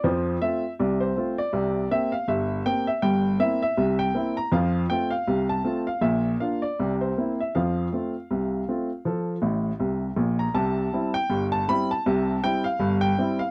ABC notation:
X:1
M:2/4
L:1/16
Q:"Swing 16ths" 1/4=80
K:F
V:1 name="Upright piano"
c2 e2 d c2 d- | d2 e f e2 g e | g2 e e2 g2 b | f2 g f2 a2 f |
e2 f d2 c2 e | f8- | f6 z b | [K:C] a3 g2 a b a- |
a2 g f2 g2 f |]
V:2 name="Upright piano"
[F,,F,]2 [A,CF]2 [C,,C,]2 [A,CF]2 | [C,,C,]2 [B,CG]2 [G,,,G,,]2 [B,CG]2 | [G,,,G,,]2 [B,CE]2 [C,,C,]2 [B,CE]2 | [F,,F,]2 [A,CF]2 [C,,C,]2 [A,CF]2 |
[B,,,B,,]2 [B,DF]2 [C,,C,]2 [B,CE]2 | [F,,F,]2 [A,CF]2 [C,,C,]2 [A,CF]2 | [F,A]2 [A,,,A,,]2 [C,,C,]2 [B,,,B,,]2 | [K:C] [C,,C,]2 [G,CE]2 [G,,,G,,]2 [G,CE]2 |
[C,,C,]2 [G,CE]2 [G,,,G,,]2 [G,CE]2 |]